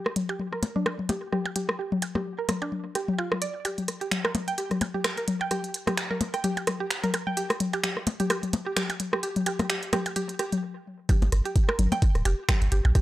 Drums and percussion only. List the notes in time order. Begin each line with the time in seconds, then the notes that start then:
0.06 cross-stick
0.16 closed hi-hat, high tom
0.29 percussion blips
0.39 high tom
0.53 cross-stick
0.63 closed hi-hat, percussion blips
0.76 high tom
0.86 cross-stick, percussion blips
0.99 high tom
1.09 closed hi-hat, percussion blips
1.33 cross-stick, high tom
1.46 percussion blips
1.56 closed hi-hat, high tom
1.69 cross-stick
1.92 high tom
2.02 closed hi-hat, percussion blips
2.15 cross-stick, high tom, percussion blips
2.49 cross-stick, closed hi-hat, high tom, percussion blips
2.62 percussion blips
2.72 high tom
2.95 cross-stick, closed hi-hat
3.08 high tom
3.19 percussion blips
3.32 cross-stick, high tom
3.42 closed hi-hat
3.65 closed hi-hat, percussion blips
3.78 closed hi-hat, high tom
3.88 cross-stick, closed hi-hat
4.01 closed hi-hat
4.11 finger snap, closed hi-hat, high tom
4.25 cross-stick, percussion blips
4.35 closed hi-hat, high tom, percussion blips
4.48 closed hi-hat
4.58 closed hi-hat
4.71 cross-stick, closed hi-hat, high tom
4.81 closed hi-hat, percussion blips
4.94 high tom
5.04 finger snap, cross-stick, closed hi-hat
5.17 closed hi-hat
5.28 closed hi-hat, high tom
5.41 percussion blips
5.51 cross-stick, closed hi-hat, high tom
5.64 closed hi-hat
5.74 closed hi-hat
5.87 cross-stick, closed hi-hat, high tom, percussion blips
5.97 finger snap, closed hi-hat, percussion blips
6.11 high tom
6.21 closed hi-hat, percussion blips
6.34 cross-stick, closed hi-hat
6.44 closed hi-hat, high tom
6.57 closed hi-hat, percussion blips
6.67 cross-stick, closed hi-hat, high tom
6.91 finger snap, closed hi-hat
7.04 closed hi-hat, high tom
7.14 cross-stick, closed hi-hat, percussion blips
7.27 high tom
7.37 closed hi-hat
7.50 cross-stick, closed hi-hat
7.60 closed hi-hat, high tom
7.73 closed hi-hat, percussion blips
7.84 finger snap, closed hi-hat, high tom
7.97 cross-stick
8.07 closed hi-hat, percussion blips
8.20 closed hi-hat, high tom
8.30 cross-stick, closed hi-hat, percussion blips
8.43 closed hi-hat, high tom
8.53 closed hi-hat, percussion blips
8.77 finger snap, cross-stick, closed hi-hat, high tom
8.90 closed hi-hat, percussion blips
9.00 closed hi-hat, high tom
9.13 cross-stick
9.23 closed hi-hat
9.36 closed hi-hat, high tom
9.46 closed hi-hat, percussion blips
9.59 cross-stick, closed hi-hat, high tom, percussion blips
9.70 finger snap, closed hi-hat
9.83 closed hi-hat
9.93 cross-stick, closed hi-hat, high tom, percussion blips
10.06 closed hi-hat, percussion blips
10.16 closed hi-hat, high tom
10.29 closed hi-hat
10.39 cross-stick, closed hi-hat
10.52 closed hi-hat, high tom
11.09 kick, closed hi-hat, high tom, percussion blips
11.22 closed hi-hat, percussion blips
11.32 cross-stick, closed hi-hat
11.45 closed hi-hat
11.56 kick, closed hi-hat
11.69 cross-stick, percussion blips
11.79 closed hi-hat, high tom
11.92 closed hi-hat, percussion blips
12.02 kick, closed hi-hat
12.15 cross-stick, closed hi-hat
12.25 closed hi-hat, percussion blips
12.49 finger snap, kick, cross-stick, closed hi-hat, high tom
12.62 closed hi-hat
12.72 closed hi-hat
12.85 percussion blips
12.95 kick, cross-stick, closed hi-hat